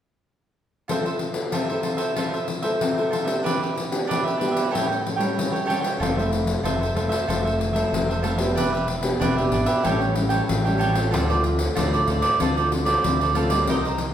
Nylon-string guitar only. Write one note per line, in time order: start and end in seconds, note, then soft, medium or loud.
0.89 1.50 F3 medium
0.89 1.19 C4 soft
0.89 1.19 E4 soft
0.89 1.20 A4 medium
1.35 1.63 C4 soft
1.35 1.63 E4 medium
1.35 1.63 A4 medium
1.53 2.14 C3 medium
1.70 2.13 C4 medium
1.70 2.13 E4 medium
1.70 2.13 A4 medium
2.17 2.78 F3 medium
2.17 2.47 C4 soft
2.17 2.47 E4 medium
2.17 2.48 A4 medium
2.63 2.91 C4 medium
2.63 2.91 E4 medium
2.63 2.91 A4 medium
2.81 3.42 C3 medium
2.98 3.24 C4 soft
2.98 3.24 E4 medium
2.98 3.25 A4 medium
3.26 3.87 B3 medium
3.26 3.87 D4 medium
3.26 3.87 G4 medium
3.45 4.06 E3 medium
3.91 4.35 B3 soft
3.91 4.35 D4 medium
3.91 4.35 G4 medium
4.10 4.70 B2 medium
4.41 4.68 B3 soft
4.41 4.68 D4 medium
4.41 4.68 G4 medium
4.74 5.34 A2 medium
4.74 5.04 G3 soft
4.74 5.04 C#4 soft
4.74 5.04 E4 medium
5.19 5.63 G3 medium
5.19 5.63 C#4 medium
5.19 5.63 E4 medium
5.38 5.98 E3 medium
5.68 5.87 G3 medium
5.68 5.88 C#4 soft
5.68 5.88 E4 medium
6.01 6.62 F3 medium
6.01 6.11 A3 medium
6.01 6.11 C4 medium
6.01 6.11 E4 medium
6.18 6.60 A3 medium
6.18 6.61 C4 medium
6.18 6.61 E4 medium
6.65 7.26 C3 medium
6.65 6.84 A3 medium
6.65 6.84 C4 medium
6.65 6.84 E4 medium
6.95 7.15 A3 medium
6.95 7.15 C4 medium
6.95 7.15 E4 medium
7.29 7.90 F3 medium
7.29 7.72 A3 medium
7.29 7.72 C4 soft
7.29 7.73 E4 medium
7.75 8.19 A3 medium
7.75 8.19 C4 medium
7.75 8.19 E4 medium
7.93 8.54 C3 medium
8.25 8.34 A3 medium
8.25 8.35 C4 medium
8.25 8.35 E4 medium
8.39 8.67 B3 medium
8.39 8.67 D4 medium
8.39 8.67 G4 medium
8.57 9.18 E3 medium
9.03 9.31 B3 medium
9.03 9.31 D4 medium
9.03 9.31 G4 medium
9.22 9.82 B2 soft
9.39 9.81 B3 medium
9.39 9.81 D4 medium
9.39 9.81 G4 medium
9.86 10.46 A2 medium
9.86 10.12 G3 medium
9.86 10.12 C#4 medium
9.86 10.13 E4 medium
10.16 10.60 G3 medium
10.16 10.60 C#4 medium
10.16 10.60 E4 medium
10.50 11.10 E3 medium
10.67 10.93 G3 medium
10.67 10.93 C#4 medium
10.67 10.93 E4 medium
10.96 11.30 A3 medium
10.96 11.31 C4 medium
10.96 11.31 F4 medium
11.15 11.75 D3 medium
11.31 11.73 A3 medium
11.31 11.73 C4 medium
11.31 11.73 F4 medium
11.79 12.39 A2 medium
11.79 12.19 A3 soft
11.79 12.19 C4 soft
11.79 12.19 F4 medium
12.42 13.02 D3 medium
12.42 12.85 A3 medium
12.42 12.85 C4 medium
12.42 12.85 F4 medium
12.87 13.31 A3 medium
12.87 13.31 C4 medium
12.87 13.31 F4 medium
13.05 13.66 A2 medium
13.36 13.47 A3 medium
13.36 13.47 C4 medium
13.36 13.48 F4 medium
13.51 13.79 G3 medium
13.51 13.79 A#3 medium
13.51 13.79 D#4 medium
13.69 14.14 C3 medium